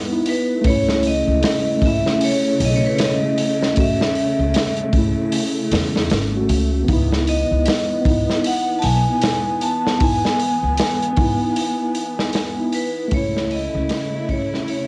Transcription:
0.00 0.61 B3 medium
0.09 0.61 B3 medium
0.09 0.62 D#4 medium
0.13 0.63 E4 medium
0.26 0.68 B4 medium
0.26 open hi-hat medium
0.61 1.23 C#2 medium
0.61 6.84 C#3 medium
0.61 1.76 A3 medium
0.61 kick loud
0.61 open hi-hat medium
0.66 6.85 A3 medium
0.66 1.79 C#4 medium
0.66 1.02 C#5 loud
0.70 1.81 E4 loud
0.89 snare soft
1.03 open hi-hat medium
1.07 1.86 D#5 loud
1.27 1.41 C#2 medium
1.43 snare loud
1.43 open hi-hat medium
1.78 3.71 A3 medium
1.78 kick medium
1.82 2.02 C#2 medium
1.82 3.73 C#4 medium
1.82 2.24 E5 loud
1.82 open hi-hat medium
1.87 3.75 E4 medium
2.06 snare soft
2.21 2.66 C#5 loud
2.21 open hi-hat medium
2.60 2.80 B1 loud
2.60 open hi-hat medium
2.65 2.75 D#5 medium
2.76 2.85 C#5 medium
2.86 2.93 B4 medium
2.94 3.00 C#5 medium
2.99 snare loud
2.99 open hi-hat medium
3.04 3.82 D#5 loud
3.38 open hi-hat medium
3.63 snare soft
3.75 3.98 A3 medium
3.75 3.99 C#4 medium
3.75 kick loud
3.75 open hi-hat medium
3.79 4.00 F#4 loud
3.79 4.92 E5 loud
4.01 snare medium
4.15 open hi-hat medium
4.39 4.53 C#2 medium
4.54 snare loud
4.54 open hi-hat medium
4.77 closed hi-hat soft
4.89 6.26 A3 medium
4.89 open hi-hat medium
4.93 5.14 C#2 medium
4.93 6.28 C#4 medium
4.93 kick medium
4.98 6.30 E4 medium
5.32 open hi-hat loud
5.71 6.07 E2 loud
5.71 snare medium
5.71 open hi-hat medium
5.96 snare medium
6.10 6.46 G#1 medium
6.10 snare loud
6.10 open hi-hat medium
6.32 6.84 A3 medium
6.32 6.85 C#4 medium
6.37 6.86 F#4 medium
6.49 6.85 C#2 loud
6.49 open hi-hat medium
6.84 14.87 E3 medium
6.84 7.99 B3 medium
6.88 7.46 C#2 loud
6.88 13.08 B3 medium
6.88 8.01 D#4 medium
6.88 14.87 E4 medium
6.88 kick loud
6.88 open hi-hat medium
6.93 8.04 E4 loud
7.12 snare soft
7.27 8.41 D#5 loud
7.27 open hi-hat medium
7.51 7.65 C#2 medium
7.66 snare loud
7.66 open hi-hat medium
8.01 8.26 C#2 medium
8.01 9.94 B3 medium
8.01 kick medium
8.06 9.97 D#4 medium
8.06 open hi-hat medium
8.10 9.99 E4 medium
8.30 snare soft
8.44 8.80 F#5 loud
8.44 open hi-hat medium
8.79 8.84 A5 medium
8.79 open hi-hat medium
8.84 9.04 B1 loud
8.84 9.64 G#5 loud
9.22 snare loud
9.22 open hi-hat medium
9.61 10.02 A5 medium
9.61 open hi-hat medium
9.87 snare soft
9.99 10.22 B3 medium
9.99 10.23 D#4 medium
9.99 12.82 G#5 loud
9.99 kick loud
9.99 open hi-hat medium
10.03 10.24 E4 loud
10.25 snare medium
10.39 open hi-hat medium
10.63 10.77 C#2 medium
10.77 snare loud
10.77 open hi-hat medium
11.02 closed hi-hat soft
11.13 12.49 B3 medium
11.13 open hi-hat medium
11.17 11.38 C#2 medium
11.17 12.52 D#4 medium
11.17 kick medium
11.21 12.54 E4 medium
11.56 open hi-hat medium
11.95 open hi-hat medium
12.19 snare medium
12.33 snare loud
12.33 open hi-hat medium
12.55 13.07 B3 medium
12.55 13.08 D#4 medium
12.60 13.09 E4 medium
12.72 13.14 B4 medium
12.72 open hi-hat medium
13.08 13.70 C#2 medium
13.08 14.23 A3 loud
13.08 kick loud
13.08 open hi-hat medium
13.12 14.87 C#3 medium
13.12 14.87 A3 medium
13.12 14.25 C#4 medium
13.12 14.87 E4 medium
13.12 13.49 C#5 loud
13.17 14.27 E4 loud
13.37 snare soft
13.51 14.32 D#5 loud
13.51 open hi-hat medium
13.75 13.88 C#2 loud
13.89 snare loud
13.89 open hi-hat medium
14.25 14.87 A3 medium
14.29 14.49 C#2 medium
14.29 14.87 C#4 medium
14.29 14.48 C#5 medium
14.29 kick medium
14.29 open hi-hat medium
14.33 14.87 E4 medium
14.54 snare soft
14.68 14.87 C#5 medium
14.68 open hi-hat medium

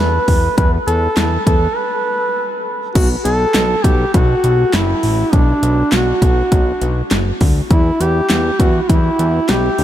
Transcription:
0.00 0.19 E2 loud
0.00 0.57 B4 loud
0.28 0.49 E2 loud
0.28 kick medium
0.28 open hi-hat medium
0.57 0.79 E2 loud
0.57 0.71 B4 loud
0.57 kick loud
0.57 closed hi-hat medium
0.87 1.08 E2 medium
0.87 1.43 A4 loud
0.87 closed hi-hat medium
1.17 1.38 E2 loud
1.17 snare loud
1.17 clap loud
1.17 closed hi-hat medium
1.46 1.67 E2 loud
1.46 1.78 A4 loud
1.46 kick medium
1.46 closed hi-hat medium
1.76 2.65 B4 loud
2.95 3.16 B1 loud
2.95 3.09 F#4 loud
2.95 kick loud
2.95 closed hi-hat medium
2.95 crash loud
3.25 3.46 B1 loud
3.25 3.86 A4 loud
3.25 closed hi-hat medium
3.54 3.76 B1 loud
3.54 snare loud
3.54 clap loud
3.54 closed hi-hat medium
3.84 4.05 B1 loud
3.84 4.14 G4 loud
3.84 kick loud
3.84 closed hi-hat medium
4.14 4.35 B1 loud
4.14 4.75 F#4 loud
4.14 kick loud
4.14 closed hi-hat medium
4.44 4.65 B1 loud
4.44 closed hi-hat medium
4.73 4.94 F#1 loud
4.73 5.34 E4 loud
4.73 snare loud
4.73 clap medium
4.73 closed hi-hat medium
5.03 5.24 A1 medium
5.03 open hi-hat medium
5.33 5.54 B1 loud
5.33 5.94 D4 medium
5.33 kick loud
5.33 closed hi-hat medium
5.63 5.84 B1 loud
5.63 closed hi-hat medium
5.92 6.13 B1 loud
5.92 7.11 F#4 medium
5.92 snare loud
5.92 clap loud
5.92 closed hi-hat medium
6.22 6.43 B1 loud
6.22 kick loud
6.22 closed hi-hat medium
6.52 6.73 B1 loud
6.52 kick loud
6.52 closed hi-hat medium
6.81 7.02 B1 loud
6.81 closed hi-hat medium
7.11 7.32 F#1 medium
7.11 snare loud
7.11 clap loud
7.11 closed hi-hat medium
7.41 7.62 D2 loud
7.41 kick medium
7.41 open hi-hat medium
7.71 7.91 E2 loud
7.71 8.02 E4 loud
7.71 kick loud
7.71 closed hi-hat medium
8.00 8.21 E2 medium
8.00 8.62 G4 loud
8.00 closed hi-hat medium
8.30 8.51 E2 loud
8.30 snare loud
8.30 clap loud
8.30 closed hi-hat medium
8.60 8.80 E2 loud
8.60 8.82 F#4 loud
8.60 kick loud
8.60 closed hi-hat medium
8.83 8.91 F#4 medium
8.89 9.10 E2 loud
8.89 9.51 E4 loud
8.89 kick loud
8.89 closed hi-hat medium
9.19 9.40 E2 loud
9.19 closed hi-hat medium
9.49 9.70 B1 medium
9.49 9.84 G4 loud
9.49 snare loud
9.49 clap loud
9.49 closed hi-hat medium
9.79 9.84 D2 loud
9.79 open hi-hat medium

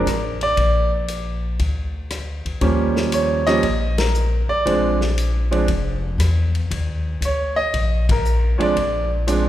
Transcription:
0.00 0.40 A#4 medium
0.06 0.53 A1 medium
0.06 cross-stick medium
0.06 hi-hat pedal medium
0.06 ride medium
0.41 0.89 D5 medium
0.41 ride soft
0.57 1.55 A#1 medium
0.57 kick soft
0.57 ride medium
1.08 hi-hat pedal soft
1.08 ride medium
1.59 2.41 D2 medium
1.59 kick soft
1.59 ride soft
2.10 cross-stick medium
2.10 hi-hat pedal medium
2.10 ride medium
2.45 2.60 D2 medium
2.45 ride soft
2.61 3.59 D#2 medium
2.61 3.40 F3 medium
2.61 3.40 G3 soft
2.61 3.41 A#3 soft
2.61 3.40 C#4 medium
2.61 kick soft
2.61 ride medium
2.96 snare medium
3.12 3.47 C#5 medium
3.12 hi-hat pedal medium
3.12 ride medium
3.47 3.62 F3 medium
3.47 3.62 G3 medium
3.47 3.62 A#3 medium
3.47 3.62 C#4 medium
3.47 3.94 D#5 medium
3.47 snare soft
3.47 ride soft
3.63 4.45 A#1 medium
3.63 kick soft
3.63 ride medium
3.98 4.46 A#4 medium
3.98 snare medium
3.98 ride medium
4.15 hi-hat pedal soft
4.48 4.97 D5 medium
4.48 muted upright bass stroke soft
4.65 5.64 A#1 medium
4.65 4.97 F3 medium
4.65 4.97 G#3 medium
4.65 4.98 C4 medium
4.65 4.98 D4 medium
4.65 kick soft
4.65 ride medium
5.01 snare soft
5.18 hi-hat pedal soft
5.18 ride medium
5.51 5.66 F3 medium
5.51 5.66 G#3 medium
5.51 5.66 C4 medium
5.51 5.66 D4 medium
5.51 ride soft
5.68 6.16 F1 medium
5.68 kick soft
5.68 ride medium
6.18 6.66 E2 medium
6.18 cross-stick medium
6.18 hi-hat pedal medium
6.18 ride medium
6.55 ride soft
6.71 7.18 D#2 medium
6.71 kick soft
6.71 ride medium
7.21 7.69 D2 medium
7.21 hi-hat pedal soft
7.21 ride medium
7.25 7.57 C#5 medium
7.56 8.04 D#5 medium
7.74 8.55 A#1 medium
7.74 kick soft
7.74 ride medium
8.09 8.57 A#4 medium
8.09 kick medium
8.09 ride medium
8.25 hi-hat pedal soft
8.58 8.73 F3 medium
8.58 8.73 G#3 medium
8.58 8.73 C4 medium
8.58 8.74 D4 medium
8.58 8.60 C#5 soft
8.58 muted upright bass stroke soft
8.58 ride soft
8.62 9.08 D5 medium
8.76 9.49 A#1 medium
8.76 kick soft
8.76 ride medium
9.27 9.49 F3 medium
9.27 9.49 G#3 medium
9.27 9.49 C4 medium
9.27 9.49 D4 medium
9.27 hi-hat pedal soft
9.27 ride medium

